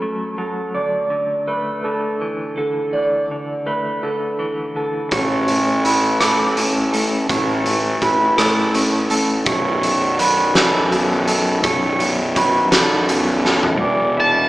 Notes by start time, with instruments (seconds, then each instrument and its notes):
Already playing: clean electric guitar F#2 F#3 C#4 A4
0.02 clean electric guitar A3
0.38 clean electric guitar F#3 A4
0.75 clean electric guitar D2 D5
1.10 clean electric guitar D3
1.47 clean electric guitar A3 B4
1.84 clean electric guitar D3 A4
2.21 clean electric guitar E3
2.57 clean electric guitar D3 A4
2.93 clean electric guitar D2 D5
3.31 clean electric guitar D3
3.66 clean electric guitar A3 B4
4.03 clean electric guitar D3 A4
4.39 clean electric guitar E3
4.76 clean electric guitar D3 A4
5.11 fingered electric bass A1, clean electric guitar A2 C#5, kick, closed hi-hat
5.48 clean electric guitar A3, closed hi-hat
5.84 clean electric guitar E4 B4, closed hi-hat
6.21 clean electric guitar A3 A4, cross-stick, closed hi-hat
6.57 clean electric guitar C#4, closed hi-hat
6.93 clean electric guitar A3 A4, closed hi-hat
7.29 fingered electric bass A1, clean electric guitar A2 C#5, kick, closed hi-hat
7.66 clean electric guitar A3, closed hi-hat
8.02 clean electric guitar E4 B4, kick, closed hi-hat
8.37 clean electric guitar A3 A4, cross-stick, closed hi-hat
8.75 clean electric guitar C#4, closed hi-hat
9.10 clean electric guitar A3 A4, closed hi-hat
9.46 fingered electric bass B0, clean electric guitar B1 C#5, kick, closed hi-hat
9.83 clean electric guitar F#2, closed hi-hat
10.19 clean electric guitar F#3 B4, closed hi-hat
10.55 clean electric guitar F#2 A4, snare, closed hi-hat
10.92 clean electric guitar B2, closed hi-hat
11.27 clean electric guitar F#2 A4, closed hi-hat
11.63 fingered electric bass B0, clean electric guitar B1 C#5, kick, closed hi-hat
12.00 clean electric guitar F#2, closed hi-hat
12.36 clean electric guitar F#3 B4, kick, closed hi-hat
12.71 clean electric guitar F#2 A4, snare, closed hi-hat
13.09 clean electric guitar B2, closed hi-hat
13.45 clean electric guitar F#2 A4, snare
13.63 floor tom
13.81 fingered electric bass E1, clean electric guitar E2 D5
14.17 clean electric guitar E4, lead electric guitar A5